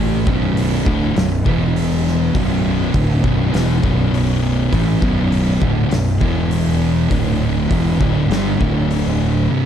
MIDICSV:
0, 0, Header, 1, 4, 480
1, 0, Start_track
1, 0, Key_signature, 2, "minor"
1, 0, Tempo, 595829
1, 1892, Time_signature, 4, 2, 24, 8
1, 7779, End_track
2, 0, Start_track
2, 0, Title_t, "Distorted electric guitar"
2, 0, Program_c, 0, 30
2, 0, Note_on_c, 0, 45, 101
2, 0, Note_on_c, 0, 52, 111
2, 0, Note_on_c, 0, 57, 109
2, 207, Note_off_c, 0, 45, 0
2, 210, Note_off_c, 0, 52, 0
2, 211, Note_on_c, 0, 35, 79
2, 213, Note_off_c, 0, 57, 0
2, 215, Note_on_c, 0, 42, 90
2, 218, Note_on_c, 0, 47, 93
2, 683, Note_off_c, 0, 35, 0
2, 686, Note_off_c, 0, 42, 0
2, 686, Note_on_c, 0, 38, 96
2, 689, Note_off_c, 0, 47, 0
2, 689, Note_on_c, 0, 45, 101
2, 693, Note_on_c, 0, 50, 92
2, 923, Note_off_c, 0, 38, 0
2, 924, Note_off_c, 0, 45, 0
2, 926, Note_off_c, 0, 50, 0
2, 932, Note_on_c, 0, 35, 72
2, 935, Note_on_c, 0, 42, 83
2, 1125, Note_off_c, 0, 35, 0
2, 1127, Note_off_c, 0, 42, 0
2, 1167, Note_on_c, 0, 40, 81
2, 1168, Note_on_c, 0, 47, 91
2, 1172, Note_on_c, 0, 52, 89
2, 1879, Note_off_c, 0, 40, 0
2, 1880, Note_off_c, 0, 47, 0
2, 1882, Note_on_c, 0, 35, 96
2, 1884, Note_off_c, 0, 52, 0
2, 1886, Note_on_c, 0, 42, 105
2, 1890, Note_on_c, 0, 47, 107
2, 2359, Note_off_c, 0, 35, 0
2, 2361, Note_off_c, 0, 42, 0
2, 2363, Note_off_c, 0, 47, 0
2, 2364, Note_on_c, 0, 38, 94
2, 2365, Note_on_c, 0, 45, 93
2, 2369, Note_on_c, 0, 50, 100
2, 2595, Note_off_c, 0, 38, 0
2, 2599, Note_off_c, 0, 45, 0
2, 2599, Note_on_c, 0, 35, 82
2, 2602, Note_on_c, 0, 42, 87
2, 2603, Note_off_c, 0, 50, 0
2, 2607, Note_on_c, 0, 47, 97
2, 2835, Note_off_c, 0, 35, 0
2, 2836, Note_off_c, 0, 47, 0
2, 2838, Note_on_c, 0, 40, 99
2, 2839, Note_off_c, 0, 42, 0
2, 2844, Note_on_c, 0, 52, 103
2, 2845, Note_on_c, 0, 47, 101
2, 3077, Note_off_c, 0, 40, 0
2, 3080, Note_off_c, 0, 47, 0
2, 3080, Note_off_c, 0, 52, 0
2, 3086, Note_on_c, 0, 35, 77
2, 3092, Note_on_c, 0, 42, 80
2, 3094, Note_on_c, 0, 47, 90
2, 3798, Note_off_c, 0, 35, 0
2, 3799, Note_off_c, 0, 42, 0
2, 3801, Note_on_c, 0, 45, 112
2, 3802, Note_on_c, 0, 52, 107
2, 3803, Note_off_c, 0, 47, 0
2, 3807, Note_on_c, 0, 57, 98
2, 4032, Note_off_c, 0, 45, 0
2, 4035, Note_on_c, 0, 35, 84
2, 4036, Note_off_c, 0, 52, 0
2, 4039, Note_on_c, 0, 42, 92
2, 4040, Note_off_c, 0, 57, 0
2, 4045, Note_on_c, 0, 47, 94
2, 4513, Note_off_c, 0, 35, 0
2, 4515, Note_off_c, 0, 42, 0
2, 4516, Note_on_c, 0, 38, 90
2, 4518, Note_on_c, 0, 45, 93
2, 4519, Note_off_c, 0, 47, 0
2, 4522, Note_on_c, 0, 50, 107
2, 4755, Note_off_c, 0, 38, 0
2, 4755, Note_off_c, 0, 45, 0
2, 4757, Note_off_c, 0, 50, 0
2, 4760, Note_on_c, 0, 35, 60
2, 4766, Note_on_c, 0, 42, 75
2, 4956, Note_off_c, 0, 35, 0
2, 4959, Note_off_c, 0, 42, 0
2, 4999, Note_on_c, 0, 40, 69
2, 5005, Note_on_c, 0, 47, 73
2, 5009, Note_on_c, 0, 52, 93
2, 5715, Note_off_c, 0, 40, 0
2, 5718, Note_on_c, 0, 38, 96
2, 5719, Note_off_c, 0, 47, 0
2, 5721, Note_off_c, 0, 52, 0
2, 5723, Note_on_c, 0, 45, 96
2, 5724, Note_on_c, 0, 50, 111
2, 6196, Note_off_c, 0, 38, 0
2, 6199, Note_off_c, 0, 45, 0
2, 6199, Note_off_c, 0, 50, 0
2, 6205, Note_on_c, 0, 40, 88
2, 6207, Note_on_c, 0, 47, 93
2, 6211, Note_on_c, 0, 52, 95
2, 6432, Note_off_c, 0, 40, 0
2, 6436, Note_on_c, 0, 38, 98
2, 6437, Note_off_c, 0, 47, 0
2, 6440, Note_on_c, 0, 45, 89
2, 6443, Note_off_c, 0, 52, 0
2, 6447, Note_on_c, 0, 50, 96
2, 6673, Note_off_c, 0, 50, 0
2, 6676, Note_off_c, 0, 38, 0
2, 6678, Note_off_c, 0, 45, 0
2, 6680, Note_on_c, 0, 43, 93
2, 6683, Note_on_c, 0, 50, 119
2, 6689, Note_on_c, 0, 55, 101
2, 6913, Note_off_c, 0, 43, 0
2, 6914, Note_off_c, 0, 50, 0
2, 6916, Note_on_c, 0, 38, 82
2, 6920, Note_off_c, 0, 55, 0
2, 6920, Note_on_c, 0, 45, 94
2, 6923, Note_on_c, 0, 50, 93
2, 7640, Note_off_c, 0, 38, 0
2, 7642, Note_off_c, 0, 45, 0
2, 7643, Note_off_c, 0, 50, 0
2, 7648, Note_on_c, 0, 36, 102
2, 7653, Note_on_c, 0, 48, 107
2, 7654, Note_on_c, 0, 43, 109
2, 7779, Note_off_c, 0, 36, 0
2, 7779, Note_off_c, 0, 43, 0
2, 7779, Note_off_c, 0, 48, 0
2, 7779, End_track
3, 0, Start_track
3, 0, Title_t, "Fingered electric bass"
3, 0, Program_c, 1, 33
3, 0, Note_on_c, 1, 33, 92
3, 198, Note_off_c, 1, 33, 0
3, 219, Note_on_c, 1, 23, 92
3, 664, Note_off_c, 1, 23, 0
3, 692, Note_on_c, 1, 26, 99
3, 916, Note_off_c, 1, 26, 0
3, 931, Note_on_c, 1, 23, 79
3, 1156, Note_off_c, 1, 23, 0
3, 1175, Note_on_c, 1, 28, 95
3, 1861, Note_off_c, 1, 28, 0
3, 1892, Note_on_c, 1, 23, 101
3, 2339, Note_off_c, 1, 23, 0
3, 2372, Note_on_c, 1, 26, 82
3, 2594, Note_off_c, 1, 26, 0
3, 2611, Note_on_c, 1, 23, 96
3, 2834, Note_off_c, 1, 23, 0
3, 2845, Note_on_c, 1, 28, 96
3, 3071, Note_off_c, 1, 28, 0
3, 3092, Note_on_c, 1, 23, 88
3, 3778, Note_off_c, 1, 23, 0
3, 3806, Note_on_c, 1, 33, 104
3, 4030, Note_off_c, 1, 33, 0
3, 4046, Note_on_c, 1, 23, 95
3, 4494, Note_off_c, 1, 23, 0
3, 4525, Note_on_c, 1, 26, 108
3, 4749, Note_off_c, 1, 26, 0
3, 4765, Note_on_c, 1, 23, 76
3, 4989, Note_off_c, 1, 23, 0
3, 5005, Note_on_c, 1, 28, 85
3, 5694, Note_off_c, 1, 28, 0
3, 5727, Note_on_c, 1, 26, 101
3, 6176, Note_off_c, 1, 26, 0
3, 6210, Note_on_c, 1, 28, 93
3, 6433, Note_off_c, 1, 28, 0
3, 6451, Note_on_c, 1, 26, 97
3, 6674, Note_off_c, 1, 26, 0
3, 6680, Note_on_c, 1, 31, 97
3, 6908, Note_off_c, 1, 31, 0
3, 6932, Note_on_c, 1, 26, 101
3, 7622, Note_off_c, 1, 26, 0
3, 7779, End_track
4, 0, Start_track
4, 0, Title_t, "Drums"
4, 217, Note_on_c, 9, 36, 116
4, 297, Note_off_c, 9, 36, 0
4, 459, Note_on_c, 9, 46, 62
4, 540, Note_off_c, 9, 46, 0
4, 696, Note_on_c, 9, 36, 103
4, 776, Note_off_c, 9, 36, 0
4, 937, Note_on_c, 9, 46, 58
4, 948, Note_on_c, 9, 38, 102
4, 1018, Note_off_c, 9, 46, 0
4, 1028, Note_off_c, 9, 38, 0
4, 1176, Note_on_c, 9, 36, 99
4, 1256, Note_off_c, 9, 36, 0
4, 1420, Note_on_c, 9, 46, 59
4, 1500, Note_off_c, 9, 46, 0
4, 1669, Note_on_c, 9, 38, 32
4, 1749, Note_off_c, 9, 38, 0
4, 1893, Note_on_c, 9, 36, 104
4, 1893, Note_on_c, 9, 46, 55
4, 1973, Note_off_c, 9, 36, 0
4, 1974, Note_off_c, 9, 46, 0
4, 2371, Note_on_c, 9, 36, 104
4, 2375, Note_on_c, 9, 46, 54
4, 2452, Note_off_c, 9, 36, 0
4, 2455, Note_off_c, 9, 46, 0
4, 2610, Note_on_c, 9, 36, 107
4, 2691, Note_off_c, 9, 36, 0
4, 2850, Note_on_c, 9, 46, 55
4, 2861, Note_on_c, 9, 38, 99
4, 2931, Note_off_c, 9, 46, 0
4, 2941, Note_off_c, 9, 38, 0
4, 3089, Note_on_c, 9, 36, 102
4, 3170, Note_off_c, 9, 36, 0
4, 3334, Note_on_c, 9, 46, 52
4, 3415, Note_off_c, 9, 46, 0
4, 3807, Note_on_c, 9, 36, 100
4, 3810, Note_on_c, 9, 46, 59
4, 3888, Note_off_c, 9, 36, 0
4, 3891, Note_off_c, 9, 46, 0
4, 4046, Note_on_c, 9, 36, 109
4, 4127, Note_off_c, 9, 36, 0
4, 4286, Note_on_c, 9, 46, 50
4, 4367, Note_off_c, 9, 46, 0
4, 4524, Note_on_c, 9, 36, 105
4, 4605, Note_off_c, 9, 36, 0
4, 4763, Note_on_c, 9, 46, 62
4, 4774, Note_on_c, 9, 38, 107
4, 4844, Note_off_c, 9, 46, 0
4, 4854, Note_off_c, 9, 38, 0
4, 5005, Note_on_c, 9, 36, 91
4, 5086, Note_off_c, 9, 36, 0
4, 5244, Note_on_c, 9, 46, 57
4, 5324, Note_off_c, 9, 46, 0
4, 5727, Note_on_c, 9, 36, 104
4, 5727, Note_on_c, 9, 46, 62
4, 5807, Note_off_c, 9, 46, 0
4, 5808, Note_off_c, 9, 36, 0
4, 6209, Note_on_c, 9, 36, 101
4, 6211, Note_on_c, 9, 46, 60
4, 6290, Note_off_c, 9, 36, 0
4, 6292, Note_off_c, 9, 46, 0
4, 6450, Note_on_c, 9, 36, 111
4, 6530, Note_off_c, 9, 36, 0
4, 6693, Note_on_c, 9, 46, 49
4, 6703, Note_on_c, 9, 38, 101
4, 6773, Note_off_c, 9, 46, 0
4, 6784, Note_off_c, 9, 38, 0
4, 6933, Note_on_c, 9, 36, 90
4, 7014, Note_off_c, 9, 36, 0
4, 7174, Note_on_c, 9, 46, 48
4, 7255, Note_off_c, 9, 46, 0
4, 7779, End_track
0, 0, End_of_file